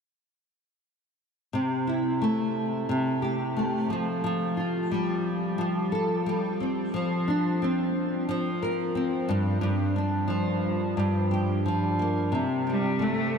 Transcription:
1.53 C3
1.87 E4
2.22 A3
2.89 C3
3.22 G4
3.56 A3
3.90 F3
4.24 F3
4.57 F4
4.91 G3
5.58 F3
5.92 A4
6.26 G3
6.60 C4
6.94 F3
7.28 D4
7.62 C4
8.29 F3
8.62 A#4
8.95 C4
9.29 G2
9.61 G2
9.96 D4
10.28 F3
10.97 G2
11.31 G4
11.66 F3
11.99 A#3
12.32 C3
12.67 G3 C4
12.99 A3
13.03 A3

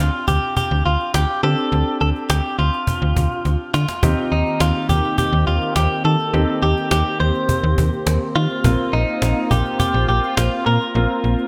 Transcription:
Already playing: C4 D4 F4
0.00 D2
0.28 D2 G4, cajon bass
0.42 cajon slap
0.57 G4, cajon bass
0.71 D2
0.86 D2 F4, cajon slap
1.00 cajon slap
1.14 D2 G4, cajon slap
1.43 D3 C4 D4 G4 A4
1.58 cajon slap
1.72 D2, cajon slap
2.01 D2 A4, cajon slap
2.15 cajon slap
2.30 D2 G4, cajon slap
2.59 D2 F4, cajon slap
2.73 cajon slap
2.87 cajon bass
3.02 D2
3.16 D2, cajon bass
3.31 cajon slap
3.45 D2, cajon slap
3.74 D3 F4, cajon slap
3.88 cajon slap
4.03 D#2 D#3 A#3 C4 D#4 G4, cajon bass
4.32 D#2 D#4, cajon slap
4.46 cajon slap
4.60 D#2 F4, cajon slap
4.89 D#2 G4, cajon bass
5.04 cajon slap
5.18 G4, cajon bass
5.33 D#2
5.47 D#2 F4, cajon slap
5.62 cajon slap
5.76 D#2 G4, cajon slap
6.05 D#3 A4
6.19 cajon slap
6.33 D#2 C4 D#4 G4, cajon slap
6.62 D#2 G4, cajon slap
6.77 cajon slap
6.91 D#2 G4, cajon slap
7.20 D#2 C5, cajon slap
7.35 cajon slap
7.49 cajon bass
7.63 D#2
7.78 D#2, cajon bass
7.92 cajon slap
8.07 D#2, cajon slap
8.36 D#3 F4
8.50 cajon slap
8.64 A#1 A#3 C4 F4, cajon bass
8.93 A#1 D#4, cajon slap
9.08 cajon slap
9.22 A#1, cajon slap
9.51 A#1 G4, cajon bass
9.65 cajon slap
9.80 G4, cajon bass
9.94 A#1
10.09 A#1 G4, cajon slap
10.23 cajon slap
10.37 A#1 F4, cajon slap
10.66 A#2 A#4
10.81 cajon slap
10.95 A#1 A#3 C4 F4, cajon slap
11.24 A#1, cajon slap
11.38 cajon slap

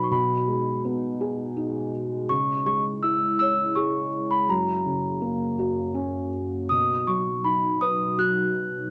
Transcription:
Already playing: B2 F#3 D#4 F#4 B4
0.03 C#6
0.11 B2 G#3 B5
0.48 G#3
0.85 B3
1.21 G#4
1.57 D#4
2.29 C#3 E4 C#6
2.66 G#3 C#6
3.02 E4 E6
3.39 C#5 E6
3.75 G#4 C#6
4.30 B5
4.48 F#2 A#3 A#5
4.86 C#3
5.22 A#3
5.59 F#4
5.94 C#4
6.69 B2 F#3 D#4 D#6
7.07 F#3 C#6
7.44 D#4 B5
7.81 B4 D#6
8.18 F#4 F#6

